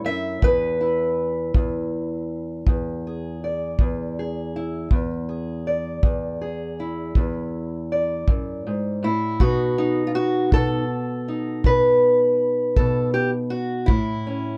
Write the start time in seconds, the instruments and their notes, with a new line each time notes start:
Already playing: steel-string acoustic guitar E4
0.05 steel-string acoustic guitar F#2 E5
0.42 steel-string acoustic guitar E2 B4, kick
0.81 steel-string acoustic guitar E4
1.54 steel-string acoustic guitar E2, kick
2.67 steel-string acoustic guitar E2, kick
3.07 steel-string acoustic guitar G#4
3.44 steel-string acoustic guitar D5
3.79 steel-string acoustic guitar E2, kick
4.19 steel-string acoustic guitar G#4
4.56 steel-string acoustic guitar E4
4.91 steel-string acoustic guitar E2, kick
5.29 steel-string acoustic guitar G#4
5.67 steel-string acoustic guitar D5
6.03 steel-string acoustic guitar E2, kick
6.41 steel-string acoustic guitar G#4
6.80 steel-string acoustic guitar E4
7.15 steel-string acoustic guitar E2, kick
7.92 steel-string acoustic guitar D5
8.28 steel-string acoustic guitar F#2, kick
8.67 steel-string acoustic guitar G#2
9.03 steel-string acoustic guitar A2 E4
9.40 steel-string acoustic guitar B2 B3 D#4 F#4, kick
9.78 steel-string acoustic guitar D#4
10.07 steel-string acoustic guitar F4
10.15 steel-string acoustic guitar F#4
10.52 steel-string acoustic guitar B2 A4, kick
11.28 steel-string acoustic guitar D#4
11.64 steel-string acoustic guitar B2 B4, kick
12.76 steel-string acoustic guitar B2 A4, kick
13.14 steel-string acoustic guitar G4
13.50 steel-string acoustic guitar F#4
13.86 steel-string acoustic guitar A2 E4, kick
14.27 steel-string acoustic guitar C#4